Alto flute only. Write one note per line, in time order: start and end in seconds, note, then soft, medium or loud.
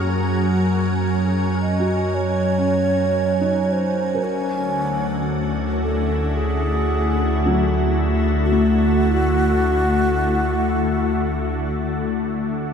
0.03 1.35 F#4 loud
1.61 2.16 D#5 medium
2.15 3.74 C#5 loud
3.72 4.26 C5 medium
4.24 5.56 C#4 loud
5.83 6.38 A4 medium
6.36 7.94 G#4 medium
8.45 12.20 F#4 loud